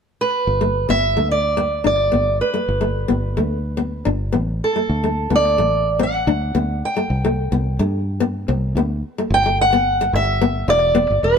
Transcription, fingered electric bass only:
0, 0, Header, 1, 2, 480
1, 0, Start_track
1, 0, Key_signature, 1, "major"
1, 0, Tempo, 551978
1, 412, Time_signature, 4, 2, 24, 8
1, 9900, End_track
2, 0, Start_track
2, 0, Title_t, "Fingered electric bass"
2, 0, Program_c, 0, 33
2, 411, Note_on_c, 0, 31, 77
2, 758, Note_off_c, 0, 31, 0
2, 779, Note_on_c, 0, 31, 77
2, 1007, Note_off_c, 0, 31, 0
2, 1021, Note_on_c, 0, 38, 63
2, 1586, Note_off_c, 0, 38, 0
2, 1616, Note_on_c, 0, 31, 72
2, 1844, Note_off_c, 0, 31, 0
2, 1857, Note_on_c, 0, 31, 83
2, 2085, Note_off_c, 0, 31, 0
2, 2335, Note_on_c, 0, 31, 79
2, 2682, Note_off_c, 0, 31, 0
2, 2697, Note_on_c, 0, 31, 69
2, 2927, Note_off_c, 0, 31, 0
2, 2936, Note_on_c, 0, 38, 67
2, 3505, Note_off_c, 0, 38, 0
2, 3536, Note_on_c, 0, 31, 78
2, 3765, Note_off_c, 0, 31, 0
2, 3775, Note_on_c, 0, 33, 77
2, 4005, Note_off_c, 0, 33, 0
2, 4256, Note_on_c, 0, 38, 75
2, 4604, Note_off_c, 0, 38, 0
2, 4615, Note_on_c, 0, 38, 73
2, 4848, Note_off_c, 0, 38, 0
2, 4858, Note_on_c, 0, 33, 66
2, 5427, Note_off_c, 0, 33, 0
2, 5454, Note_on_c, 0, 38, 85
2, 5685, Note_off_c, 0, 38, 0
2, 5696, Note_on_c, 0, 38, 75
2, 5926, Note_off_c, 0, 38, 0
2, 6174, Note_on_c, 0, 36, 75
2, 6523, Note_off_c, 0, 36, 0
2, 6538, Note_on_c, 0, 36, 78
2, 6769, Note_off_c, 0, 36, 0
2, 6780, Note_on_c, 0, 43, 73
2, 7348, Note_off_c, 0, 43, 0
2, 7382, Note_on_c, 0, 36, 86
2, 7609, Note_off_c, 0, 36, 0
2, 7613, Note_on_c, 0, 38, 76
2, 7844, Note_off_c, 0, 38, 0
2, 8091, Note_on_c, 0, 31, 88
2, 8778, Note_off_c, 0, 31, 0
2, 8812, Note_on_c, 0, 31, 85
2, 9268, Note_off_c, 0, 31, 0
2, 9288, Note_on_c, 0, 28, 99
2, 9636, Note_off_c, 0, 28, 0
2, 9656, Note_on_c, 0, 31, 77
2, 9760, Note_off_c, 0, 31, 0
2, 9765, Note_on_c, 0, 28, 85
2, 9900, Note_off_c, 0, 28, 0
2, 9900, End_track
0, 0, End_of_file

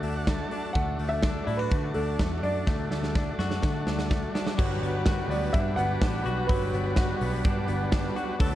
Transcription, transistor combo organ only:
0, 0, Header, 1, 2, 480
1, 0, Start_track
1, 0, Tempo, 478088
1, 756, Time_signature, 4, 2, 24, 8
1, 8584, End_track
2, 0, Start_track
2, 0, Title_t, "Transistor combo organ"
2, 0, Program_c, 0, 18
2, 0, Note_on_c, 0, 62, 62
2, 0, Note_on_c, 0, 66, 49
2, 0, Note_on_c, 0, 69, 65
2, 33, Note_on_c, 0, 76, 68
2, 146, Note_off_c, 0, 76, 0
2, 160, Note_on_c, 0, 78, 61
2, 270, Note_off_c, 0, 78, 0
2, 279, Note_on_c, 0, 81, 71
2, 710, Note_off_c, 0, 62, 0
2, 717, Note_off_c, 0, 66, 0
2, 722, Note_off_c, 0, 69, 0
2, 724, Note_off_c, 0, 81, 0
2, 738, Note_on_c, 0, 62, 61
2, 750, Note_on_c, 0, 66, 53
2, 763, Note_on_c, 0, 69, 66
2, 4550, Note_off_c, 0, 62, 0
2, 4556, Note_off_c, 0, 66, 0
2, 4562, Note_off_c, 0, 69, 0
2, 4576, Note_on_c, 0, 62, 78
2, 4590, Note_on_c, 0, 66, 72
2, 4597, Note_on_c, 0, 55, 67
2, 4602, Note_on_c, 0, 71, 76
2, 8385, Note_off_c, 0, 62, 0
2, 8392, Note_off_c, 0, 66, 0
2, 8395, Note_off_c, 0, 55, 0
2, 8398, Note_off_c, 0, 71, 0
2, 8418, Note_on_c, 0, 62, 73
2, 8425, Note_on_c, 0, 66, 68
2, 8430, Note_on_c, 0, 69, 65
2, 8439, Note_on_c, 0, 71, 82
2, 8584, Note_off_c, 0, 62, 0
2, 8584, Note_off_c, 0, 66, 0
2, 8584, Note_off_c, 0, 69, 0
2, 8584, Note_off_c, 0, 71, 0
2, 8584, End_track
0, 0, End_of_file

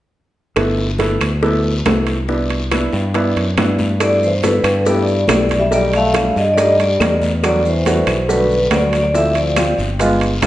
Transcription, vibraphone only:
0, 0, Header, 1, 2, 480
1, 0, Start_track
1, 0, Key_signature, 1, "major"
1, 0, Tempo, 428878
1, 635, Time_signature, 4, 2, 24, 8
1, 11712, End_track
2, 0, Start_track
2, 0, Title_t, "Vibraphone"
2, 0, Program_c, 0, 11
2, 4503, Note_on_c, 0, 74, 99
2, 4739, Note_off_c, 0, 74, 0
2, 4746, Note_on_c, 0, 72, 77
2, 4849, Note_off_c, 0, 72, 0
2, 4977, Note_on_c, 0, 71, 77
2, 5457, Note_on_c, 0, 74, 73
2, 5464, Note_off_c, 0, 71, 0
2, 5896, Note_off_c, 0, 74, 0
2, 5943, Note_on_c, 0, 74, 77
2, 6261, Note_on_c, 0, 76, 95
2, 6262, Note_off_c, 0, 74, 0
2, 6415, Note_off_c, 0, 76, 0
2, 6422, Note_on_c, 0, 74, 99
2, 6658, Note_off_c, 0, 74, 0
2, 6671, Note_on_c, 0, 77, 102
2, 7103, Note_off_c, 0, 77, 0
2, 7139, Note_on_c, 0, 75, 91
2, 7298, Note_off_c, 0, 75, 0
2, 7315, Note_on_c, 0, 74, 81
2, 7367, Note_off_c, 0, 74, 0
2, 7387, Note_on_c, 0, 75, 88
2, 7620, Note_off_c, 0, 75, 0
2, 7628, Note_on_c, 0, 74, 96
2, 8061, Note_off_c, 0, 74, 0
2, 8348, Note_on_c, 0, 74, 99
2, 8557, Note_off_c, 0, 74, 0
2, 8588, Note_on_c, 0, 72, 84
2, 9247, Note_off_c, 0, 72, 0
2, 9291, Note_on_c, 0, 71, 80
2, 9761, Note_on_c, 0, 74, 82
2, 9777, Note_off_c, 0, 71, 0
2, 10070, Note_off_c, 0, 74, 0
2, 10084, Note_on_c, 0, 74, 81
2, 10154, Note_off_c, 0, 74, 0
2, 10244, Note_on_c, 0, 76, 100
2, 10474, Note_on_c, 0, 74, 81
2, 10486, Note_off_c, 0, 76, 0
2, 10920, Note_off_c, 0, 74, 0
2, 11712, End_track
0, 0, End_of_file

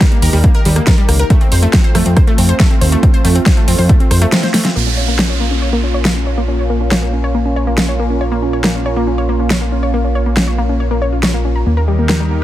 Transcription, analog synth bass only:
0, 0, Header, 1, 2, 480
1, 0, Start_track
1, 0, Key_signature, -5, "minor"
1, 0, Tempo, 431655
1, 1449, Time_signature, 4, 2, 24, 8
1, 13831, End_track
2, 0, Start_track
2, 0, Title_t, "Analog synth bass"
2, 0, Program_c, 0, 38
2, 249, Note_on_c, 0, 39, 83
2, 331, Note_off_c, 0, 39, 0
2, 368, Note_on_c, 0, 39, 104
2, 533, Note_off_c, 0, 39, 0
2, 728, Note_on_c, 0, 39, 97
2, 893, Note_off_c, 0, 39, 0
2, 1209, Note_on_c, 0, 37, 100
2, 1374, Note_off_c, 0, 37, 0
2, 1689, Note_on_c, 0, 41, 100
2, 1854, Note_off_c, 0, 41, 0
2, 2170, Note_on_c, 0, 41, 82
2, 2252, Note_off_c, 0, 41, 0
2, 2290, Note_on_c, 0, 41, 101
2, 2454, Note_off_c, 0, 41, 0
2, 2650, Note_on_c, 0, 41, 93
2, 2814, Note_off_c, 0, 41, 0
2, 3130, Note_on_c, 0, 39, 105
2, 3294, Note_off_c, 0, 39, 0
2, 3610, Note_on_c, 0, 41, 101
2, 3774, Note_off_c, 0, 41, 0
2, 4089, Note_on_c, 0, 41, 79
2, 4172, Note_off_c, 0, 41, 0
2, 4210, Note_on_c, 0, 41, 101
2, 4374, Note_off_c, 0, 41, 0
2, 4571, Note_on_c, 0, 41, 83
2, 4735, Note_off_c, 0, 41, 0
2, 5290, Note_on_c, 0, 34, 87
2, 12946, Note_off_c, 0, 34, 0
2, 12969, Note_on_c, 0, 39, 86
2, 13831, Note_off_c, 0, 39, 0
2, 13831, End_track
0, 0, End_of_file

